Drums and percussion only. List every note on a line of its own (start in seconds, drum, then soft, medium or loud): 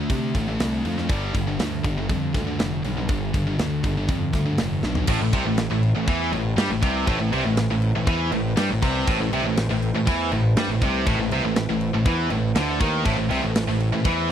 0.10 kick loud
0.10 open hi-hat medium
0.35 kick medium
0.35 open hi-hat medium
0.60 snare loud
0.60 open hi-hat medium
0.85 open hi-hat medium
0.98 snare soft
1.09 kick loud
1.09 open hi-hat medium
1.35 kick medium
1.35 open hi-hat medium
1.59 snare loud
1.59 open hi-hat medium
1.84 kick medium
1.84 open hi-hat medium
2.09 kick loud
2.09 open hi-hat medium
2.34 kick medium
2.34 snare soft
2.34 open hi-hat medium
2.60 snare loud
2.60 open hi-hat medium
2.84 open hi-hat medium
3.09 kick loud
3.09 open hi-hat medium
3.34 kick medium
3.34 open hi-hat medium
3.59 snare loud
3.59 open hi-hat medium
3.84 kick medium
3.84 open hi-hat medium
4.08 kick loud
4.08 open hi-hat medium
4.33 kick medium
4.33 snare soft
4.33 open hi-hat medium
4.58 snare loud
4.58 open hi-hat medium
4.83 snare medium
4.95 floor tom medium
5.07 kick loud
5.07 crash loud
5.07 crash medium
5.33 kick loud
5.33 crash medium
5.57 snare loud
5.57 crash medium
5.83 crash medium
6.08 kick loud
6.08 crash medium
6.33 crash medium
6.58 snare loud
6.58 crash medium
6.83 kick loud
6.83 crash medium
7.07 kick loud
7.07 crash medium
7.33 crash medium
7.57 snare loud
7.57 crash medium
7.82 crash medium
8.07 kick loud
8.07 crash medium
8.32 crash medium
8.57 snare loud
8.57 crash medium
8.82 kick loud
8.82 crash medium
9.07 kick loud
9.07 crash medium
9.33 crash medium
9.57 snare loud
9.57 crash medium
9.82 crash medium
10.07 kick loud
10.07 crash medium
10.32 crash medium
10.57 snare loud
10.57 crash medium
10.82 kick loud
10.82 crash medium
11.07 kick loud
11.07 crash medium
11.31 crash medium
11.56 snare loud
11.56 crash medium
11.81 crash medium
12.05 kick loud
12.05 crash medium
12.30 crash medium
12.55 snare loud
12.55 crash medium
12.81 kick loud
12.81 crash medium
13.05 kick loud
13.05 crash medium
13.31 crash medium
13.55 snare loud
13.55 crash loud
13.80 crash medium
14.05 kick loud
14.05 crash medium